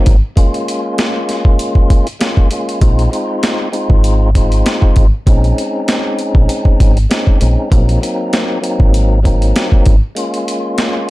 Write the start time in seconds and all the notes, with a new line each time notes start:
Already playing: F#3 A#3 C4 D#4
0.06 G#1, kick, closed hi-hat
0.36 G#3 A#3 C#4 F4, kick, closed hi-hat
0.54 closed hi-hat
0.68 closed hi-hat
0.98 snare, closed hi-hat
1.29 snare, closed hi-hat
1.45 kick
1.59 closed hi-hat
1.75 kick
1.90 kick, closed hi-hat
2.07 closed hi-hat
2.19 G#3 A#3 C#4 F4, snare, closed hi-hat
2.37 kick
2.51 G#3 A#3 C#4 F4, closed hi-hat
2.69 closed hi-hat
2.80 A#1 G#3 C4 D#4 F4, kick, closed hi-hat
2.99 closed hi-hat
3.11 G#3 C4 D#4 F4, closed hi-hat
3.43 snare, closed hi-hat
3.72 G#3 C4 D#4 F4, closed hi-hat
3.90 G#1, kick
4.04 closed hi-hat
4.35 G#3 C4 D#4 F4, kick, closed hi-hat
4.52 closed hi-hat
4.66 snare, closed hi-hat
4.82 kick
4.96 G#1, kick, closed hi-hat
5.26 A#1 G#3 C4 C#4 D#4, kick, closed hi-hat
5.44 closed hi-hat
5.58 closed hi-hat
5.88 snare, closed hi-hat
6.19 closed hi-hat
6.35 A#1, kick
6.49 closed hi-hat
6.65 kick
6.80 G#1, kick, closed hi-hat
6.97 closed hi-hat
7.09 G#3 C4 C#4 D#4, snare, closed hi-hat
7.27 kick
7.40 A#1 G#3 C4 C#4 D#4, closed hi-hat
7.70 A#1 F#3 A#3 C4 D#4, kick, closed hi-hat
7.89 closed hi-hat
8.01 F#3 A#3 C4 D#4, closed hi-hat
8.33 snare, closed hi-hat
8.61 F#3 A#3 C4 D#4, closed hi-hat
8.80 G#1, kick
8.94 closed hi-hat
9.23 F#3 A#3 C4 D#4, kick, closed hi-hat
9.42 closed hi-hat
9.56 snare, closed hi-hat
9.72 kick
9.86 G#1, kick, closed hi-hat
10.15 G#3 A#3 C#4 F4, closed hi-hat
10.34 closed hi-hat
10.48 closed hi-hat
10.78 snare, closed hi-hat